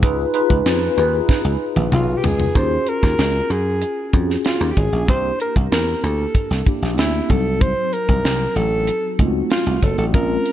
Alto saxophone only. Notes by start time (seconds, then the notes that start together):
1.94 F4
2.17 G4
2.25 G#4
2.56 C5
2.89 A#4
3.52 G#4
4.46 F4
4.71 G4
4.78 G#4
5.10 C5
5.41 A#4
5.73 A#4
6.04 A4
6.99 E4
7.30 A4
7.61 C5
7.93 A#4
8.56 A4
9.52 F4
9.83 A4
9.99 A4
10.15 A#4